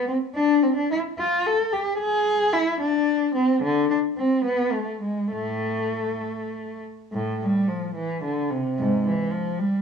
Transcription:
cello
Already playing: B3
0.08 C4
0.36 D4
0.63 C4
0.77 D4
0.92 E4
1.19 F4
1.47 A4
1.73 G4
1.98 G#4
2.53 E4
2.81 D4
3.35 C4
3.63 D3
3.91 D4
4.18 C4
4.45 B3
4.73 A3
5.02 G#3
5.32 A2 A3
7.13 A2
7.41 G3
7.68 F3
7.96 E3
8.24 D3
8.51 C3
8.78 G#2
9.05 E3
9.31 F3
9.59 G3

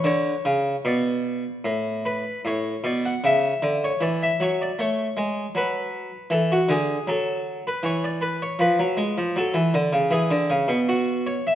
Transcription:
harpsichord
0.04 D3 C#5
0.45 C#3
0.85 B2 D5
1.65 A2
2.05 B4
2.45 A2 C#5
2.84 B2 D5
3.05 F#5
3.24 C#3 E5
3.62 D3
3.84 C#5
4.01 E3 D5
4.23 E5
4.40 F#3 C#5
4.62 D5
4.79 A3 C#5
5.17 G#3
5.55 F#3 B4
6.30 E3 A4
6.52 F#4
6.69 D3 G#4
7.07 F#3 A4
7.67 B4
7.83 E3 C#5
8.04 D5
8.21 B4
8.42 C#5
8.59 F3 B4
8.79 F#3
8.97 G#3
9.18 F3
9.36 F#3 A4
9.54 E3
9.74 D3
9.93 C#3
10.11 E3 G#4
10.31 D3
10.50 C#3
10.68 B2
10.89 F#4
11.27 C#5
11.47 E5

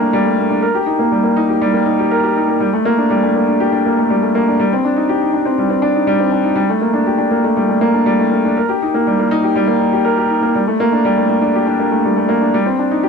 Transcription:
upright piano
Already playing: G3 A3 A#3 G4
0.00 D4
0.13 G3
0.25 A3
0.38 A#3
0.50 D4
0.62 A#4
0.74 G4
0.86 D#4
0.99 A#3
1.12 G3
1.24 A#3
1.36 D#4
1.49 G4
1.61 G3
1.73 A#3
1.86 D#4
1.99 G4
2.11 A#4
2.24 G4
2.36 D#4
2.48 A#3
2.60 G3
2.73 A3
2.85 A#3
2.98 D4
3.10 G3
3.23 A3
3.35 A#3
3.48 D4
3.60 G4
3.72 D4
3.86 A#3
3.98 A3
4.10 G3
4.23 A3
4.35 A#3
4.48 D4
4.60 G3
4.72 C4
4.85 D4
4.97 D#4
5.09 G4
5.22 D#4
5.33 D4
5.45 C4
5.58 G3
5.70 C4
5.82 D4
5.95 D#4
6.07 G3
6.19 C4
6.32 D4
6.43 D#4
6.56 G3
6.69 A3
6.81 A#3
6.93 D4
7.07 G4
7.18 D4
7.31 A#3
7.44 A3
7.57 G3
7.69 A3
7.81 A#3
7.94 D4
8.06 G3
8.19 A3
8.31 A#3
8.45 D4
8.57 A#4
8.69 G4
8.82 D#4
8.94 A#3
9.07 G3
9.19 A#3
9.31 D#4
9.44 G4
9.56 G3
9.67 A#3
9.80 D#4
9.93 G4
10.05 A#4
10.18 G4
10.30 D#4
10.42 A#3
10.55 G3
10.67 A3
10.80 A#3
10.92 D4
11.05 G3
11.18 A3
11.29 A#3
11.42 D4
11.55 G4
11.67 D4
11.79 A#3
11.91 A3
12.05 G3
12.17 A3
12.29 A#3
12.41 D4
12.54 G3
12.66 C4
12.79 D4
12.91 D#4
13.03 G4

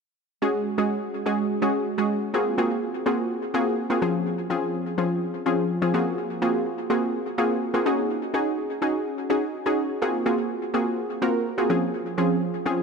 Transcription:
synth pluck
0.42 G#3 C#4 F#4 G#4
0.78 G#3 C#4 F#4 G#4
1.26 G#3 C#4 F#4 G#4
1.62 G#3 C#4 F#4 G#4
1.98 G#3 C#4 F#4 G#4
2.34 A#3 C4 F4 F#4 G#4
2.58 A#3 C4 F4 F#4 G#4
3.06 A#3 C4 F4 F#4 G#4
3.54 A#3 C4 F4 F#4 G#4
3.90 A#3 C4 F4 F#4 G#4
4.02 F3 C4 C#4 F4 G#4
4.50 F3 C4 C#4 F4 G#4
4.98 F3 C4 C#4 F4 G#4
5.46 F3 C4 C#4 F4 G#4
5.82 F3 C4 C#4 F4 G#4
5.94 A#3 C4 F4 F#4 G#4
6.42 A#3 C4 F4 F#4 G#4
6.90 A#3 C4 F4 F#4 G#4
7.38 A#3 C4 F4 F#4 G#4
7.74 A#3 C4 F4 F#4 G#4
7.86 C#4 D#4 F#4 G#4
8.34 C#4 D#4 F#4 G#4
8.82 C#4 D#4 F#4 G#4
9.30 C#4 D#4 F#4 G#4
9.66 C#4 D#4 F#4 G#4
10.02 A#3 C4 F4 F#4 G#4
10.26 A#3 C4 F4 F#4 G#4
10.74 A#3 C4 F4 F#4 G#4
11.22 A#3 C4 F4 F#4 A#4
11.58 A#3 C4 F4 F#4 G#4
11.70 F3 C4 C#4 F4 G#4
12.18 F3 C4 C#4 F4 G#4
12.66 F3 C4 C#4 F4 G#4

